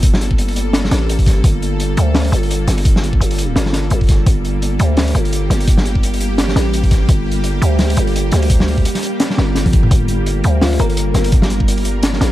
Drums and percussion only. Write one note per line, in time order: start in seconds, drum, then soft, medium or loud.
0.03 kick loud
0.03 closed hi-hat medium
0.14 snare medium
0.21 closed hi-hat medium
0.31 kick medium
0.38 closed hi-hat medium
0.48 open hi-hat medium
0.56 closed hi-hat medium
0.73 snare loud
0.73 closed hi-hat medium
0.84 snare medium
0.91 snare medium
0.91 closed hi-hat medium
1.09 closed hi-hat medium
1.19 kick medium
1.19 open hi-hat medium
1.26 kick loud
1.26 snare soft
1.26 closed hi-hat medium
1.44 kick loud
1.44 closed hi-hat loud
1.62 closed hi-hat medium
1.80 closed hi-hat medium
1.97 closed hi-hat medium
2.14 snare loud
2.14 snare medium
2.14 open hi-hat medium
2.24 open hi-hat medium
2.33 closed hi-hat medium
2.43 open hi-hat medium
2.51 closed hi-hat medium
2.68 snare soft
2.68 closed hi-hat medium
2.78 open hi-hat medium
2.85 kick loud
2.85 closed hi-hat medium
2.96 snare medium
3.03 closed hi-hat medium
3.13 kick medium
3.21 closed hi-hat medium
3.31 open hi-hat medium
3.38 closed hi-hat medium
3.56 snare loud
3.56 closed hi-hat medium
3.66 snare medium
3.73 snare medium
3.73 closed hi-hat medium
3.90 closed hi-hat medium
4.01 kick medium
4.01 open hi-hat soft
4.04 open hi-hat soft
4.07 kick loud
4.07 snare soft
4.07 closed hi-hat medium
4.07 open hi-hat soft
4.26 kick loud
4.26 closed hi-hat medium
4.45 closed hi-hat medium
4.62 closed hi-hat medium
4.79 closed hi-hat medium
4.97 snare loud
4.97 snare medium
4.97 open hi-hat medium
5.08 open hi-hat medium
5.15 closed hi-hat medium
5.25 open hi-hat medium
5.33 closed hi-hat medium
5.50 snare soft
5.50 closed hi-hat medium
5.60 open hi-hat medium
5.68 kick loud
5.68 closed hi-hat medium
5.78 snare medium
5.85 closed hi-hat soft
5.95 kick medium
6.03 closed hi-hat medium
6.14 open hi-hat medium
6.21 closed hi-hat medium
6.38 snare loud
6.38 closed hi-hat medium
6.48 snare medium
6.56 snare medium
6.56 closed hi-hat medium
6.73 closed hi-hat medium
6.84 kick medium
6.84 open hi-hat medium
6.91 kick loud
6.91 snare soft
6.91 closed hi-hat medium
7.09 kick loud
7.09 closed hi-hat medium
7.31 closed hi-hat medium
7.44 closed hi-hat medium
7.62 closed hi-hat medium
7.79 snare medium
7.79 open hi-hat medium
7.90 open hi-hat medium
7.97 closed hi-hat medium
8.07 open hi-hat soft
8.16 closed hi-hat medium
8.32 snare soft
8.32 closed hi-hat medium
8.42 open hi-hat medium
8.50 kick loud
8.50 closed hi-hat medium
8.60 snare medium
8.68 open hi-hat medium
8.78 kick medium
8.85 closed hi-hat medium
8.95 snare soft
8.95 open hi-hat medium
9.03 closed hi-hat medium
9.20 snare loud
9.20 closed hi-hat medium
9.30 snare medium
9.38 snare medium
9.55 snare medium
9.55 closed hi-hat medium
9.66 kick medium
9.66 open hi-hat medium
9.66 high tom medium
9.73 kick loud
9.73 closed hi-hat medium
9.83 mid tom medium
9.91 kick loud
9.91 closed hi-hat medium
10.08 closed hi-hat medium
10.26 closed hi-hat medium
10.44 closed hi-hat medium
10.62 snare loud
10.62 snare medium
10.62 open hi-hat medium
10.73 open hi-hat medium
10.79 closed hi-hat medium
10.90 open hi-hat medium
10.97 closed hi-hat loud
11.14 snare soft
11.14 closed hi-hat medium
11.24 open hi-hat medium
11.32 kick loud
11.32 closed hi-hat medium
11.42 snare medium
11.50 closed hi-hat medium
11.60 kick medium
11.68 closed hi-hat medium
11.78 open hi-hat medium
11.85 closed hi-hat medium
12.03 snare loud
12.03 closed hi-hat loud
12.13 snare medium
12.21 snare medium
12.21 closed hi-hat medium